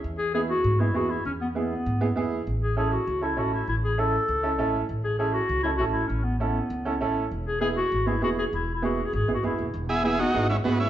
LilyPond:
<<
  \new Staff \with { instrumentName = "Clarinet" } { \time 4/4 \key e \major \tempo 4 = 198 r8 gis'8 gis'8 fis'4 e'8 fis'8 e'8 | cis'8 b8 b2~ b8 r8 | r8 gis'8 gis'8 fis'4 e'8 fis'8 e'8 | e'8 gis'8 a'2~ a'8 r8 |
r8 gis'8 gis'8 fis'4 e'8 fis'8 e'8 | cis'8 b8 b2~ b8 r8 | r8 gis'8 gis'8 fis'4 e'8 fis'8 gis'8 | \tuplet 3/2 { e'4 e'8 fis'4 gis'8 gis'4 fis'8 } e'8. r16 |
r8 b8 b8 b4 gis8 b8 gis8 | }
  \new Staff \with { instrumentName = "Transistor combo organ" } { \time 4/4 \key e \major r1 | r1 | r1 | r1 |
r1 | r1 | r1 | r1 |
r8 <e' gis'>8 <e' gis'>8 <dis' fis'>4 <cis' e'>8 <b fis'>8 <cis' e'>8 | }
  \new Staff \with { instrumentName = "Upright piano" } { \time 4/4 \key e \major r4 <b e' gis'>8 r4 <b e' gis'>8 <b e' gis'>8 r8 | r4 <b e' gis'>8 r4 <b e' gis'>8 <b e' gis'>8 r8 | r4 <cis' e' a'>8 r4 <cis' e' a'>8 <cis' e' a'>8 r8 | r4 <cis' e' a'>8 r4 <cis' e' a'>8 <cis' e' a'>8 r8 |
r4 <cis' e' a'>8 r4 <cis' e' a'>8 <cis' e' a'>8 r8 | r4 <cis' e' a'>8 r4 <cis' e' a'>8 <cis' e' a'>8 r8 | r4 <b e' gis'>8 r4 <b e' gis'>8 <b e' gis'>8 r8 | r4 <b e' gis'>8 r4 <b e' gis'>8 <b e' gis'>8 r8 |
r4 <b e' gis'>8 r8 <b e' gis'>8 r8 <b e' gis'>8 r8 | }
  \new Staff \with { instrumentName = "Upright bass" } { \clef bass \time 4/4 \key e \major e,2 gis,4 e,4 | e,2 gis,4 e,4 | a,,2 cis,4 a,,4 | a,,2 cis,4 a,,4 |
a,,2 cis,4 a,,4 | a,,2 cis,4 a,,4 | e,,2 gis,,4 e,,4 | e,,2 gis,,8 gis,,8 fis,,8 e,,8 |
e,,2 gis,,4 gis,,4 | }
>>